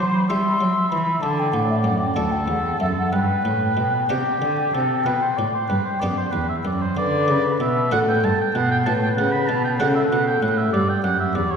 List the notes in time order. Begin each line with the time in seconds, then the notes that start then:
Already playing: C5 C6
0.00 F#3
0.14 B5
0.28 G3 E4 G4 E5 C6
0.61 F#3
0.90 E3 B5
1.22 D3 D5 A5
1.39 G5
1.54 A2 F#5
1.70 E5
1.84 F#2 F#5
2.01 G5
2.15 D2 D4 F#4 A4 A5
2.32 G5
2.48 E2 F#5
2.80 F#2 E5
2.98 F#5
3.12 G2 B4 G5
3.45 A2
3.77 B2
4.09 C3 B3 D4 G4
4.42 D3
4.74 C3 A4
5.06 B2 B3 B4
5.22 C5
5.37 A2 D5
5.55 C5
5.69 G2 B4
5.85 C5
6.00 F#2 B3 D4 G4 D5
6.18 C5
6.31 E2 B4
6.49 E5
6.65 F#2 D5
6.82 C5
6.97 D3 B4 D5
7.28 C#3
7.60 B2 E5
7.91 A2 A3 D4 F#4 A4 F#5
8.09 G5
8.23 G2 A5
8.41 G5
8.54 B2 F#5
8.71 G5
8.86 A2 A3 B4 A5
9.03 G5
9.17 C#3 F#5
9.32 B5
9.48 B2 A5
9.65 G5
9.80 C#3 A3 D4 F#4 A4 F#5
9.95 E5
10.11 B2 F#5
10.27 G5
10.42 A2 F#5
10.58 E5
10.72 G2 G4 D5
10.89 G5
11.03 F#2 F#5
11.20 E5
11.35 E2 D5
11.51 C#5